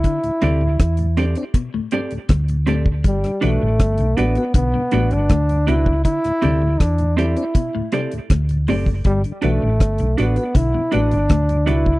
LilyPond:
<<
  \new Staff \with { instrumentName = "Clean electric guitar" } { \time 4/4 \key g \major \tempo 4 = 80 r8 <c' g' a' d''>16 r8. <c' g' a' d''>16 r8. <c' g' a' d''>16 r8. <c' g' a' d''>16 r16 | r8 <d' fis' b' d''>16 r8. <d' fis' b' d''>16 r8. <d' fis' b' d''>16 r8. <d' fis' b' d''>16 r16 | r8 <c' g' a' d''>16 r8. <c' g' a' d''>16 r8. <c' g' a' d''>16 r8. <c' g' a' d''>16 r16 | r8 <d' fis' b' d''>16 r8. <d' fis' b' d''>16 r8. <d' fis' b' d''>16 r8. <d' fis' b' d''>16 r16 | }
  \new Staff \with { instrumentName = "Trombone" } { \time 4/4 \key g \major e'4. r2 r8 | g8 a4 b8 b8. d'8. e'8 | e'4 d'8 e'4 r4. | g8 a4 b8 e'8 d'4 e'8 | }
  \new Staff \with { instrumentName = "Tonewheel organ" } { \clef bass \time 4/4 \key g \major r16 <d, a,>16 <g c' d'>16 <d, a,>16 r16 <d, a,>16 <g c' d'>16 <c' d'>16 r16 <d, a,>16 <g c' d'>16 <d, a,>16 r16 <d, a,>16 <g c' d'>16 <d, a,>16 | r16 <g, d>16 <g b fis'>16 <g, d>16 r16 <g, d>16 <g b fis'>16 <b fis'>16 r16 <g, d>16 <g b fis'>16 <g, d>16 r16 <g, d>16 <g b fis'>16 <g, d>16 | r16 <d, a,>16 <g c' d'>16 <d, a,>16 r16 <d, a,>16 <g c' d'>16 <c' d'>16 r16 <d, a,>16 <g c' d'>16 <d, a,>16 r16 <d, a,>16 <g c' d'>16 <d, a,>16 | r16 <g, d>16 <g b fis'>16 <g, d>16 r16 <g, d>16 <g b fis'>16 <b fis'>16 r16 <g, d>16 <g b fis'>16 <g, d>16 r16 <g, d>16 <g b fis'>16 <g, d>16 | }
  \new Staff \with { instrumentName = "Clean electric guitar" } { \clef bass \time 4/4 \key g \major d16 r16 c16 r4 r16 b,16 a,16 g,16 r16 g,16 r16 a,16 r16 | g16 r16 e16 r4 r16 d16 b,16 a,16 r16 a,16 r16 b,16 r16 | d16 r16 c16 r4 r16 b,16 a,16 c16 r16 a,16 r16 a,16 r16 | g16 r16 e16 r4 r16 d16 b,16 a,16 r16 a,16 r16 b,16 r16 | }
  \new Staff \with { instrumentName = "Fingered electric bass" } { \clef bass \time 4/4 \key g \major r8 d,8 e,8. r4 r16 d,4 | g,,16 r16 b,,16 a,,16 g,,16 b,,16 a,,16 r16 b,,16 r16 a,,16 g,,16 d,8 cis,8 | r8 d,8 e,8. r4 r16 d,8 fis,,8 | g,,16 r16 b,,16 a,,16 g,,16 b,,16 a,,16 r16 b,,16 r16 a,,16 g,,16 d,8 cis,8 | }
  \new DrumStaff \with { instrumentName = "Drums" } \drummode { \time 4/4 <hh bd>16 hh16 hh8 <hh bd ss>16 hh16 hh16 hh16 <hh bd>8 hh16 hh16 <hh bd ss>16 hh16 hh16 bd16 | <hh bd>16 <hh ss>16 hh8 <hh bd ss>16 hh16 hh16 hh16 <hh bd>8 hh16 hh16 <hh bd ss>16 hh16 hh16 bd16 | <hh bd>16 <hh ss>16 hh8 <hh bd ss>16 hh16 hh16 hh16 <hh bd>8 hh16 hh16 <hh bd ss>16 hh16 hho16 bd16 | <hh bd>16 hh16 hh8 <hh bd ss>16 hh16 hh16 hh16 <hh bd>8 hh16 hh16 <hh bd ss>16 hh16 hh16 bd16 | }
>>